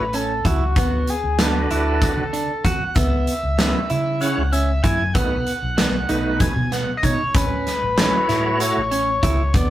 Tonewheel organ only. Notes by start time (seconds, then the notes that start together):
1.40 D3 D4 F#4 B4
2.02 D3 D4 F#4 B4
3.58 C#3 C#4 E4 B4
4.21 C#3 C#4 E4 C#5
5.14 B2 A3 D#4 B4
6.09 B2 A3 D#4 B4
7.97 A3 E4 F#4 C#5
8.60 A3 E4 F#4 C#5